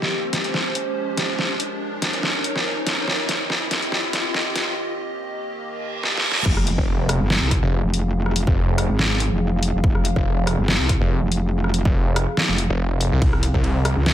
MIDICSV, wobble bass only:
0, 0, Header, 1, 2, 480
1, 0, Start_track
1, 0, Key_signature, -4, "minor"
1, 0, Tempo, 422535
1, 1576, Time_signature, 4, 2, 24, 8
1, 16059, End_track
2, 0, Start_track
2, 0, Title_t, "Wobble bass"
2, 0, Program_c, 0, 39
2, 7334, Note_on_c, 0, 29, 95
2, 7683, Note_off_c, 0, 29, 0
2, 8184, Note_on_c, 0, 31, 95
2, 8403, Note_off_c, 0, 31, 0
2, 8424, Note_on_c, 0, 36, 97
2, 8643, Note_off_c, 0, 36, 0
2, 8904, Note_on_c, 0, 29, 101
2, 9603, Note_off_c, 0, 29, 0
2, 10104, Note_on_c, 0, 32, 99
2, 10564, Note_off_c, 0, 32, 0
2, 10584, Note_on_c, 0, 29, 96
2, 11044, Note_off_c, 0, 29, 0
2, 11064, Note_on_c, 0, 29, 97
2, 11157, Note_off_c, 0, 29, 0
2, 11175, Note_on_c, 0, 29, 98
2, 11524, Note_off_c, 0, 29, 0
2, 12024, Note_on_c, 0, 31, 99
2, 12243, Note_off_c, 0, 31, 0
2, 12264, Note_on_c, 0, 36, 96
2, 12484, Note_off_c, 0, 36, 0
2, 12744, Note_on_c, 0, 29, 103
2, 13444, Note_off_c, 0, 29, 0
2, 14184, Note_on_c, 0, 29, 99
2, 14403, Note_off_c, 0, 29, 0
2, 15015, Note_on_c, 0, 36, 100
2, 15364, Note_off_c, 0, 36, 0
2, 15863, Note_on_c, 0, 37, 100
2, 16059, Note_off_c, 0, 37, 0
2, 16059, End_track
0, 0, End_of_file